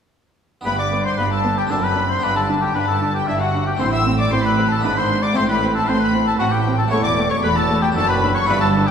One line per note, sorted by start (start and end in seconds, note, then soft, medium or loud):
0.61 1.65 B3 medium
0.61 1.66 D4 medium
0.61 1.67 G4 medium
0.65 1.12 G1 medium
0.65 1.09 G2 medium
0.65 1.13 G2 medium
0.65 0.74 B3 medium
0.65 0.78 B4 medium
0.65 0.78 B5 loud
0.78 1.04 D5 medium
0.78 1.05 D6 medium
0.78 0.87 D6 medium
0.92 1.00 B3 medium
1.05 1.17 C5 medium
1.05 1.19 C6 medium
1.17 1.65 G1 medium
1.17 1.61 G2 medium
1.17 1.65 G2 medium
1.17 1.26 B3 medium
1.17 1.23 B4 medium
1.17 1.32 B5 medium
1.32 1.59 A4 medium
1.32 1.57 A5 loud
1.32 1.58 A5 medium
1.44 1.52 B3 medium
1.58 1.72 G4 medium
1.58 1.63 G5 loud
1.58 1.72 G5 medium
1.67 2.17 F#1 medium
1.67 2.20 C4 medium
1.67 2.20 D4 medium
1.67 1.78 D4 medium
1.67 2.21 A4 medium
1.67 1.85 A4 loud
1.67 1.76 A5 loud
1.71 2.17 F#2 medium
1.71 2.14 F#2 medium
1.71 1.84 A5 medium
1.83 2.08 B4 medium
1.83 2.10 B5 loud
1.83 2.11 B5 medium
1.96 2.04 D4 medium
2.09 2.24 C5 medium
2.09 2.24 C6 medium
2.09 2.24 C6 loud
2.19 2.69 G1 medium
2.19 3.74 B3 medium
2.19 3.75 D4 medium
2.19 2.30 D4 medium
2.19 3.76 G4 medium
2.19 2.35 B4 medium
2.23 2.70 G2 medium
2.23 2.67 G2 medium
2.23 2.36 B5 loud
2.23 2.37 B5 loud
2.36 2.48 A4 medium
2.36 2.63 A5 medium
2.48 2.56 D4 medium
2.61 2.74 G4 medium
2.61 2.76 G5 medium
2.74 3.22 G1 medium
2.74 3.22 G2 medium
2.74 3.19 G2 medium
2.74 2.82 D4 medium
2.74 2.87 B4 medium
2.74 2.89 B5 loud
2.74 2.89 B5 medium
2.87 3.13 A4 medium
2.87 3.15 A5 loud
2.87 3.16 A5 medium
3.01 3.09 D4 medium
3.14 3.28 G4 medium
3.14 3.29 G5 medium
3.27 3.74 G1 medium
3.27 3.74 G2 medium
3.27 3.72 G2 medium
3.27 3.35 D4 medium
3.27 3.39 E4 medium
3.27 3.41 E5 medium
3.27 3.34 E5 medium
3.40 3.66 F#4 medium
3.40 3.67 F#5 medium
3.40 3.68 F#5 medium
3.54 3.62 D4 medium
3.66 3.73 G4 medium
3.66 3.80 G5 medium
3.66 3.81 G5 medium
3.77 4.27 A1 medium
3.77 4.79 A3 medium
3.77 4.80 C4 medium
3.77 3.88 C4 medium
3.77 4.81 E4 medium
3.77 3.92 C5 medium
3.77 3.93 C6 loud
3.81 4.24 A2 medium
3.81 4.27 A2 medium
3.81 3.94 C6 loud
3.92 4.05 E5 medium
3.92 4.19 E6 loud
3.92 4.19 E6 medium
4.06 4.14 C4 medium
4.19 4.32 D5 loud
4.19 4.32 D6 loud
4.19 4.33 D6 medium
4.32 4.78 A1 medium
4.32 4.76 A2 medium
4.32 4.79 A2 medium
4.32 4.40 C4 medium
4.32 4.44 C5 medium
4.32 4.45 C6 loud
4.32 4.46 C6 medium
4.45 4.71 B4 medium
4.45 4.71 B5 loud
4.45 4.71 B5 medium
4.58 4.66 C4 medium
4.71 4.84 A4 medium
4.71 4.84 A5 loud
4.71 4.84 A5 medium
4.81 5.33 B3 medium
4.81 5.33 D4 medium
4.81 4.91 D4 medium
4.81 5.34 E4 medium
4.81 4.96 B4 medium
4.81 4.97 B5 loud
4.85 5.30 G#1 medium
4.85 5.30 G#2 medium
4.85 5.27 G#2 medium
4.96 5.24 C5 medium
4.96 5.23 C6 loud
4.96 5.23 C6 medium
5.10 5.18 D4 medium
5.22 5.37 D5 loud
5.22 5.36 D6 medium
5.22 5.36 D6 loud
5.33 5.82 A1 medium
5.33 6.86 A3 medium
5.33 6.87 C4 medium
5.33 5.43 C4 medium
5.33 6.88 E4 medium
5.33 5.48 C5 loud
5.33 5.49 C6 loud
5.33 5.42 C6 loud
5.37 5.82 A2 loud
5.37 5.79 A2 medium
5.48 5.74 B4 medium
5.48 5.74 B5 loud
5.48 5.75 B5 medium
5.61 5.69 C4 medium
5.74 5.89 A4 medium
5.74 5.88 A5 medium
5.74 5.89 A5 medium
5.87 6.34 A1 medium
5.87 6.31 A2 medium
5.87 6.34 A2 medium
5.87 5.95 C4 medium
5.87 6.00 C5 loud
5.87 6.01 C6 loud
5.87 6.02 C6 loud
6.00 6.12 B4 medium
6.00 6.27 B5 loud
6.00 6.28 B5 medium
6.14 6.22 C4 medium
6.26 6.38 A4 medium
6.26 6.33 A5 loud
6.26 6.41 A5 medium
6.38 6.86 A1 medium
6.38 6.86 A2 medium
6.38 6.83 A2 medium
6.38 6.48 C4 medium
6.38 6.53 F#4 loud
6.38 6.45 F#5 loud
6.38 6.53 F#5 loud
6.52 6.77 G4 medium
6.52 6.78 G5 medium
6.52 6.80 G5 medium
6.66 6.74 C4 medium
6.78 6.84 A4 medium
6.78 6.92 A5 loud
6.78 6.92 A5 medium
6.88 7.38 E1 medium
6.88 7.92 A3 medium
6.88 7.00 A3 medium
6.88 7.92 E4 medium
6.88 7.93 G4 medium
6.88 7.02 C#5 loud
6.88 7.05 C#6 loud
6.88 6.97 C#6 loud
6.93 7.38 E2 loud
6.93 7.35 E2 medium
7.03 7.29 D5 loud
7.03 7.12 D6 loud
7.03 7.30 D6 loud
7.18 7.26 A3 medium
7.30 7.37 C#5 loud
7.30 7.35 C#6 loud
7.30 7.44 C#6 loud
7.43 7.90 E1 medium
7.43 7.90 E2 loud
7.43 7.87 E2 medium
7.43 7.52 A3 medium
7.43 7.49 B4 loud
7.43 7.56 B5 loud
7.43 7.50 B5 loud
7.56 7.84 A4 loud
7.56 7.82 A5 loud
7.56 7.83 A5 loud
7.70 7.78 A3 medium
7.82 7.95 G4 medium
7.82 7.88 G5 medium
7.82 7.88 G5 loud
7.92 8.45 D4 medium
7.92 8.46 F#4 medium
7.92 8.09 A4 loud
7.92 8.09 A5 loud
7.96 8.43 F#1 loud
7.96 8.43 F#2 loud
7.96 8.40 F#2 medium
7.96 8.05 D4 medium
7.96 8.09 A5 loud
8.08 8.36 B4 loud
8.08 8.35 B5 loud
8.08 8.36 B5 loud
8.23 8.31 D4 medium
8.35 8.47 C#5 medium
8.35 8.41 C#6 loud
8.35 8.49 C#6 loud
8.44 8.91 B3 medium
8.44 8.91 D4 medium
8.44 8.91 E4 medium
8.44 8.60 B4 loud
8.44 8.61 B5 loud
8.48 8.91 G1 loud
8.48 8.91 G2 medium
8.48 8.91 G2 loud
8.48 8.58 D4 medium
8.48 8.62 B5 loud
8.61 8.88 A4 loud
8.61 8.69 A5 loud
8.61 8.88 A5 loud
8.76 8.84 D4 medium
8.87 8.91 G4 loud
8.87 8.91 G5 loud